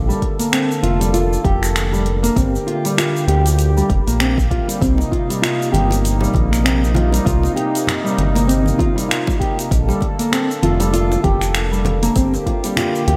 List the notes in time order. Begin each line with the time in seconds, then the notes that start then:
Already playing: A#1 D3 A#3 A4
0.08 G3, cabasa
0.22 kick, closed hi-hat
0.39 A#3, closed hi-hat, cabasa
0.52 C4, finger snap, closed hi-hat, cabasa
0.72 cabasa
0.83 F1 F4, closed hi-hat
1.00 G3, closed hi-hat, cabasa
1.13 F4, closed hi-hat, cabasa
1.33 cabasa
1.44 F1 G4, kick, closed hi-hat
1.63 finger snap, closed hi-hat, cabasa
1.76 finger snap, closed hi-hat, cabasa
1.93 G3, cabasa
2.06 closed hi-hat
2.23 A#3, closed hi-hat, cabasa
2.36 G1 A#3 C4 G4, kick, closed hi-hat, cabasa
2.55 cabasa
2.67 F4, closed hi-hat
2.85 G3, closed hi-hat, cabasa
2.97 F4, finger snap, closed hi-hat, cabasa
3.17 cabasa
3.27 D2 G4, closed hi-hat
3.46 closed hi-hat, cabasa
3.59 closed hi-hat, cabasa
3.77 G3, cabasa
3.90 F1, kick, closed hi-hat
4.07 A#1 A#3, closed hi-hat, cabasa
4.20 C4, finger snap, closed hi-hat, cabasa
4.38 kick, cabasa
4.51 F4, kick, closed hi-hat
4.67 G3, closed hi-hat, cabasa
4.81 C2 C3 C4 D#4, kick, closed hi-hat, cabasa
4.98 high bongo, cabasa
5.11 F4, kick, closed hi-hat, high bongo
5.30 G3, closed hi-hat, cabasa
5.42 F4, finger snap, closed hi-hat, cabasa
5.62 cabasa
5.72 G1 G4, closed hi-hat, high conga
5.91 closed hi-hat, high bongo, cabasa
6.05 closed hi-hat, cabasa
6.21 G3, high bongo, cabasa
6.34 A#1, kick, closed hi-hat, high conga
6.51 A#3, finger snap, closed hi-hat, cabasa
6.64 C4, finger snap, closed hi-hat, cabasa
6.84 cabasa
6.94 F4, closed hi-hat, high conga, low conga
7.12 G3, closed hi-hat, high bongo, cabasa
7.25 C2 F4, kick, closed hi-hat, cabasa
7.43 high bongo, cabasa
7.56 G4, closed hi-hat, high bongo
7.75 closed hi-hat, cabasa
7.87 finger snap, closed hi-hat, low conga, cabasa
8.04 G3, cabasa
8.18 G1, closed hi-hat, high conga
8.35 A#3, closed hi-hat, high bongo, cabasa
8.47 C4, closed hi-hat, cabasa
8.66 high conga, cabasa
8.78 F4, kick, closed hi-hat, high conga
8.95 G3, closed hi-hat, cabasa
9.09 F4, finger snap, closed hi-hat, cabasa
9.27 kick, high bongo, cabasa
9.40 G4, kick, closed hi-hat
9.59 closed hi-hat, cabasa
9.71 A#1 D3 A4, kick, closed hi-hat, cabasa
9.88 G3, high bongo, cabasa
10.01 kick, closed hi-hat, high bongo
10.19 A#3, closed hi-hat, cabasa
10.32 C4, finger snap, closed hi-hat, cabasa
10.51 cabasa
10.63 F1 F4, closed hi-hat, high conga
10.80 G3, closed hi-hat, high bongo, cabasa
10.93 F4, closed hi-hat, cabasa
11.12 high bongo, cabasa
11.23 F1 G4, kick, closed hi-hat, high conga
11.41 finger snap, closed hi-hat, cabasa
11.55 finger snap, closed hi-hat, cabasa
11.71 G3, cabasa
11.85 closed hi-hat, high conga, low conga
12.02 A#3, closed hi-hat, high bongo, cabasa
12.16 G1 D3 A#3 C4 G4, kick, closed hi-hat, cabasa
12.34 high bongo, cabasa
12.46 F4, kick, closed hi-hat, high bongo
12.64 G3, closed hi-hat, cabasa
12.77 F4, finger snap, closed hi-hat, low conga, cabasa
12.95 cabasa
13.07 D2 G4, closed hi-hat, high conga